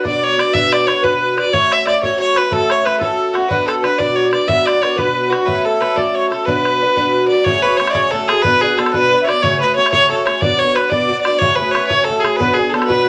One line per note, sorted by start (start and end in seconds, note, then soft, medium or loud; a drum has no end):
0.03 0.39 B2 medium
0.03 0.53 F#3 medium
0.03 0.39 D4 medium
0.03 0.39 F#4 medium
0.03 0.36 B4 medium
0.03 0.35 D5 medium
0.03 0.25 D5 medium
0.03 bodhran medium
0.23 0.41 C#5 loud
0.37 0.53 D4 soft
0.37 0.54 F#4 soft
0.37 0.53 B4 soft
0.37 0.54 D5 medium
0.37 0.55 D5 loud
0.37 bodhran medium
0.53 0.87 B2 medium
0.53 0.86 F#3 medium
0.53 0.87 D4 medium
0.53 0.88 F#4 medium
0.53 0.88 B4 medium
0.53 0.74 E5 loud
0.53 0.62 E5 medium
0.53 bodhran medium
0.71 0.86 D5 medium
0.71 0.88 D5 loud
0.71 bodhran medium
0.86 1.03 F#3 medium
0.86 1.03 D4 medium
0.86 1.02 F#4 medium
0.86 1.01 B4 medium
0.86 1.05 C#5 medium
0.86 1.04 C#5 medium
0.86 bodhran medium
1.02 1.38 B2 medium
1.02 1.52 F#3 medium
1.02 1.37 D4 medium
1.02 1.37 F#4 medium
1.02 1.48 B4 medium
1.02 1.35 B4 medium
1.02 1.37 B4 medium
1.02 bodhran medium
1.36 1.53 D4 soft
1.36 1.53 F#4 soft
1.36 1.52 B4 soft
1.36 1.55 D5 medium
1.36 bodhran medium
1.52 1.85 A3 medium
1.52 1.86 C#4 medium
1.52 1.88 F#4 medium
1.52 1.87 A4 medium
1.52 1.69 C#5 medium
1.52 1.74 C#5 loud
1.52 bodhran medium
1.71 1.85 E5 medium
1.71 1.86 E5 loud
1.71 bodhran medium
1.86 2.02 A3 medium
1.86 2.02 C#4 medium
1.86 2.03 F#4 medium
1.86 2.02 A4 medium
1.86 2.01 D5 medium
1.86 bodhran medium
2.01 2.38 F#4 medium
2.01 2.35 A4 medium
2.01 2.17 C#5 medium
2.01 2.19 C#5 medium
2.01 bodhran medium
2.05 2.37 A3 soft
2.05 2.37 C#4 medium
2.19 2.36 C#5 medium
2.19 2.39 C#5 loud
2.35 2.50 C#4 soft
2.35 2.51 F#4 soft
2.35 2.51 A4 soft
2.35 2.52 B4 medium
2.35 2.54 B4 medium
2.35 bodhran medium
2.51 2.83 A3 medium
2.51 2.85 C#4 medium
2.51 2.86 F#4 medium
2.51 2.70 A4 medium
2.51 2.72 A4 loud
2.51 2.86 A4 medium
2.51 bodhran medium
2.68 2.83 C#5 medium
2.68 2.86 C#5 medium
2.68 bodhran medium
2.84 3.00 A3 medium
2.84 3.01 C#4 medium
2.84 3.00 F#4 medium
2.84 2.99 A4 medium
2.84 3.01 B4 medium
2.84 3.00 B4 medium
2.84 bodhran medium
2.99 3.35 A3 medium
2.99 3.35 C#4 medium
2.99 3.35 F#4 medium
2.99 3.35 A4 medium
2.99 3.32 A4 medium
2.99 bodhran medium
3.33 3.50 C#4 soft
3.33 3.50 F#4 medium
3.33 3.51 F#4 medium
3.33 3.49 F#4 soft
3.33 3.49 A4 soft
3.33 bodhran medium
3.48 3.83 B2 medium
3.48 3.82 F#3 medium
3.48 3.83 D4 medium
3.48 3.85 F#4 medium
3.48 3.68 B4 medium
3.48 3.66 B4 loud
3.48 3.84 B4 medium
3.48 bodhran medium
3.67 3.74 A4 medium
3.67 3.83 A4 medium
3.67 bodhran medium
3.83 3.99 F#3 soft
3.83 3.98 D4 medium
3.83 3.97 F#4 medium
3.83 4.00 B4 medium
3.83 3.97 B4 medium
3.83 bodhran medium
3.97 4.34 B2 soft
3.97 4.47 F#3 medium
3.97 4.33 D4 medium
3.97 4.33 F#4 medium
3.97 4.31 B4 medium
3.97 4.30 D5 medium
3.97 4.17 D5 medium
3.97 bodhran medium
4.15 4.32 C#5 medium
4.32 4.47 D4 soft
4.32 4.47 F#4 soft
4.32 4.48 B4 soft
4.32 4.47 D5 medium
4.32 4.49 D5 medium
4.32 bodhran medium
4.47 4.82 B2 medium
4.47 4.80 F#3 medium
4.47 4.80 D4 medium
4.47 4.82 F#4 medium
4.47 4.82 B4 medium
4.47 4.67 E5 medium
4.47 bodhran medium
4.66 4.83 D5 loud
4.66 4.99 D5 medium
4.66 bodhran medium
4.80 4.97 F#3 medium
4.80 4.96 D4 medium
4.80 4.96 F#4 medium
4.80 4.94 B4 medium
4.80 4.98 C#5 medium
4.80 bodhran medium
4.96 5.32 B2 medium
4.96 5.45 F#3 medium
4.96 5.31 D4 medium
4.96 5.31 F#4 medium
4.96 5.28 B4 medium
4.96 5.32 B4 medium
4.96 bodhran medium
5.30 5.46 D4 soft
5.30 5.47 F#4 medium
5.30 5.46 F#4 medium
5.30 5.46 F#4 soft
5.30 5.47 B4 medium
5.30 bodhran medium
5.45 5.79 A3 medium
5.45 5.80 C#4 medium
5.45 5.82 F#4 medium
5.45 5.81 A4 medium
5.45 5.66 B4 medium
5.45 5.64 B4 medium
5.45 bodhran medium
5.65 5.81 A4 medium
5.65 5.98 A4 medium
5.80 5.97 A3 medium
5.80 5.96 C#4 medium
5.80 5.96 F#4 medium
5.80 5.95 A4 medium
5.80 5.97 B4 medium
5.80 bodhran soft
5.96 6.31 A3 medium
5.96 6.31 C#4 medium
5.96 6.31 F#4 medium
5.96 6.30 A4 medium
5.96 6.16 D5 medium
5.96 6.15 D5 medium
5.96 bodhran medium
6.14 6.31 C#5 medium
6.14 6.29 C#5 medium
6.29 6.47 F#4 soft
6.29 6.46 A4 medium
6.29 6.45 A4 medium
6.29 6.47 A4 soft
6.29 bodhran soft
6.33 6.47 C#4 soft
6.45 6.80 B2 medium
6.45 6.80 F#3 medium
6.45 6.81 D4 medium
6.45 6.83 F#4 medium
6.45 7.27 B4 medium
6.45 7.26 B4 medium
6.45 bodhran medium
6.49 6.82 B4 medium
6.65 bodhran soft
6.80 6.96 F#3 soft
6.80 6.96 D4 medium
6.80 6.96 F#4 medium
6.80 6.95 B4 medium
6.96 7.31 B2 medium
6.96 7.46 F#3 medium
6.96 7.30 D4 medium
6.96 7.31 F#4 medium
6.96 7.29 B4 medium
6.96 bodhran medium
7.28 7.46 B4 soft
7.28 7.46 D5 medium
7.32 7.47 D4 soft
7.32 7.47 F#4 soft
7.44 7.63 F#2 medium
7.44 7.64 C#3 medium
7.44 7.64 F#3 medium
7.44 7.64 A3 medium
7.44 7.64 C#4 medium
7.44 7.63 G#4 medium
7.44 7.63 C#5 loud
7.44 7.91 C#5 medium
7.44 bodhran medium
7.62 7.79 A3 soft
7.62 7.80 C#4 soft
7.62 7.80 G#4 soft
7.62 7.78 B4 loud
7.62 bodhran soft
7.67 7.77 F#3 soft
7.77 7.94 F#3 medium
7.77 7.94 A3 medium
7.77 7.89 C#5 medium
7.77 bodhran medium
7.81 7.94 C#4 medium
7.81 7.93 G#4 medium
7.87 7.94 D5 medium
7.87 bodhran medium
7.93 8.13 F#2 medium
7.93 8.13 C#3 medium
7.93 8.10 F#3 soft
7.93 8.12 A3 medium
7.93 8.13 C#4 medium
7.93 8.13 G#4 medium
7.93 8.12 C#5 medium
7.93 8.13 C#5 medium
7.93 bodhran medium
8.11 8.28 F#3 medium
8.11 8.29 A3 medium
8.11 8.28 C#4 medium
8.11 8.29 A4 loud
8.11 8.29 A4 medium
8.11 bodhran soft
8.15 8.28 G#4 medium
8.28 8.45 A3 soft
8.28 8.45 C#4 soft
8.28 8.43 G#4 medium
8.28 8.44 G#4 medium
8.28 bodhran medium
8.32 8.44 F#3 soft
8.42 8.62 B2 medium
8.42 8.63 F#3 medium
8.42 8.63 B3 medium
8.42 8.62 D4 medium
8.42 8.63 B4 loud
8.42 8.75 B4 medium
8.42 bodhran medium
8.46 8.60 F#4 medium
8.61 8.77 B3 soft
8.61 8.78 D4 soft
8.61 8.78 F#4 medium
8.61 8.79 G#4 medium
8.61 bodhran soft
8.77 8.93 F#3 medium
8.77 8.93 B3 medium
8.77 8.93 D4 medium
8.77 8.92 F#4 medium
8.77 8.92 A4 medium
8.77 8.94 A4 medium
8.77 bodhran medium
8.86 bodhran medium
8.92 9.12 B2 medium
8.92 9.09 F#3 medium
8.92 9.11 B3 medium
8.92 9.12 D4 medium
8.92 9.11 F#4 medium
8.92 9.24 B4 loud
8.92 9.26 B4 loud
8.92 bodhran medium
9.11 9.27 F#3 medium
9.11 9.28 B3 medium
9.11 9.28 D4 medium
9.11 9.26 F#4 medium
9.22 9.28 C#5 medium
9.22 9.41 D5 medium
9.22 9.27 E5 medium
9.27 9.43 D4 soft
9.27 9.43 F#4 medium
9.27 9.44 D5 medium
9.27 bodhran medium
9.31 9.43 B3 soft
9.41 9.61 F#2 medium
9.41 9.61 C#3 medium
9.41 9.61 F#3 medium
9.41 9.61 A3 medium
9.41 9.60 C#4 medium
9.41 9.59 G#4 medium
9.41 9.60 C#5 medium
9.41 9.60 C#5 loud
9.41 bodhran medium
9.58 9.77 C#4 soft
9.58 9.76 G#4 medium
9.58 9.74 B4 medium
9.58 9.75 B4 medium
9.62 9.75 F#3 soft
9.62 9.76 A3 soft
9.62 bodhran soft
9.75 9.92 F#3 medium
9.75 9.92 A3 medium
9.75 9.91 C#4 medium
9.75 9.89 C#5 loud
9.75 9.91 C#5 loud
9.79 9.91 G#4 medium
9.86 bodhran medium
9.91 10.11 F#2 medium
9.91 10.11 C#3 medium
9.91 10.08 F#3 medium
9.91 10.10 A3 medium
9.91 10.10 C#4 medium
9.91 10.10 G#4 medium
9.91 10.23 C#5 loud
9.91 10.09 C#5 loud
9.91 bodhran medium
10.10 10.26 F#3 medium
10.10 10.26 A3 medium
10.10 10.25 C#4 medium
10.10 10.24 G#4 medium
10.10 10.27 A4 medium
10.10 bodhran soft
10.24 10.41 F#3 soft
10.24 10.42 A3 soft
10.24 10.42 C#4 soft
10.24 10.42 G#4 soft
10.24 10.42 C#5 medium
10.24 bodhran medium
10.41 10.60 B2 medium
10.41 10.60 F#3 medium
10.41 10.60 B3 medium
10.41 10.61 D4 medium
10.41 10.59 F#4 medium
10.41 10.60 D5 loud
10.41 10.58 D5 medium
10.41 bodhran medium
10.59 10.76 D4 medium
10.59 10.76 F#4 soft
10.59 10.76 C#5 loud
10.59 10.76 C#5 medium
10.59 bodhran soft
10.64 10.76 B3 soft
10.74 10.91 F#3 soft
10.74 10.91 B3 medium
10.74 10.91 D4 soft
10.74 10.91 B4 medium
10.74 bodhran medium
10.79 10.90 F#4 medium
10.89 11.08 F#3 medium
10.89 11.09 B3 medium
10.89 11.10 D4 medium
10.89 11.09 F#4 medium
10.89 11.20 D5 medium
10.89 11.23 D5 medium
10.89 bodhran medium
10.94 11.10 B2 medium
11.09 11.25 F#3 medium
11.09 11.25 B3 medium
11.09 11.26 D4 medium
11.09 11.24 F#4 medium
11.09 bodhran soft
11.21 11.40 D5 medium
11.21 11.41 D5 medium
11.25 11.42 B3 soft
11.25 11.42 D4 soft
11.25 11.41 F#4 soft
11.25 bodhran medium
11.38 11.59 F#2 medium
11.38 11.59 C#3 medium
11.38 11.59 F#3 medium
11.38 11.59 A3 medium
11.38 11.57 C#5 loud
11.38 11.58 C#5 medium
11.38 bodhran medium
11.43 11.59 C#4 medium
11.43 11.58 G#4 medium
11.55 11.75 G#4 medium
11.55 11.72 B4 medium
11.59 11.74 F#3 soft
11.59 11.74 A3 soft
11.59 11.75 C#4 medium
11.59 11.92 B4 medium
11.59 bodhran soft
11.71 11.90 F#3 medium
11.71 11.86 C#5 medium
11.75 11.91 A3 medium
11.75 11.90 C#4 medium
11.75 11.89 G#4 medium
11.75 bodhran medium
11.87 12.08 G#4 medium
11.87 12.05 C#5 loud
11.87 12.07 C#5 medium
11.87 bodhran medium
11.91 12.10 F#2 soft
11.91 12.09 C#3 medium
11.91 12.07 F#3 medium
11.91 12.08 A3 medium
11.91 12.09 C#4 medium
12.04 12.21 A4 loud
12.08 12.24 F#3 medium
12.08 12.24 A3 medium
12.08 12.23 C#4 medium
12.08 12.22 G#4 medium
12.08 12.25 A4 medium
12.08 bodhran soft
12.19 12.38 G#4 medium
12.19 12.39 G#4 soft
12.24 12.38 F#3 soft
12.24 12.39 A3 soft
12.24 12.40 C#4 soft
12.24 12.40 G#4 medium
12.24 bodhran medium
12.36 12.57 B2 medium
12.36 12.57 F#3 medium
12.36 12.58 B3 medium
12.36 12.55 B4 loud
12.36 12.58 B4 medium
12.41 12.57 D4 medium
12.41 12.55 F#4 medium
12.41 bodhran medium
12.53 12.73 F#4 medium
12.53 12.71 G#4 medium
12.57 12.73 B3 soft
12.57 12.73 D4 soft
12.57 12.72 G#4 medium
12.57 bodhran soft
12.69 12.89 F#3 medium
12.69 12.83 A4 medium
12.69 12.90 A4 medium
12.74 12.88 B3 medium
12.74 12.88 D4 medium
12.74 12.87 F#4 medium
12.74 bodhran medium
12.82 13.09 B4 loud
12.82 bodhran medium
12.88 13.08 B2 medium
12.88 13.04 F#3 medium
12.88 13.05 B3 medium
12.88 13.06 D4 medium
12.88 13.07 F#4 medium
12.88 13.07 B4 medium
12.88 bodhran medium
13.05 13.09 F#3 medium